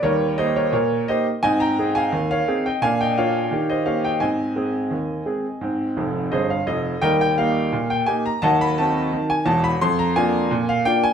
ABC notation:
X:1
M:2/4
L:1/16
Q:1/4=86
K:Ab
V:1 name="Upright piano"
[Bd]2 [ce] [Bd] [Bd]2 [ce] z | [ea] [gb]2 [fa]2 [df]2 [eg] | [fa] [eg] [df]3 [ce] [df] [eg] | [ea]8- |
[ea]4 [Ace] f e2 | [K:Eb] [Beg] g f3 g a b | [e_g=a] _c' a3 _a =a c' | c' b a3 f g a |]
V:2 name="Upright piano"
[E,,G,]2 [B,EG]2 B,,2 [B,EG]2 | [A,,C]2 [CEA]2 E,,2 [CEA]2 | [B,,=D]2 [B,DF]2 [E,G]2 [B,_DG]2 | [A,,C]2 [A,CA]2 E,,2 [A,CA]2 |
[A,,C]2 [F,,,F,,]2 [G,,,G,,]2 [F,,,F,,]2 | [K:Eb] [E,,G,]2 [B,EG]2 B,,2 [B,EG]2 | [E,,_G,]2 [CE_G]2 E,2 [_F,,,_F,,]2 | F,,2 [B,DF]2 B,,2 [B,DF]2 |]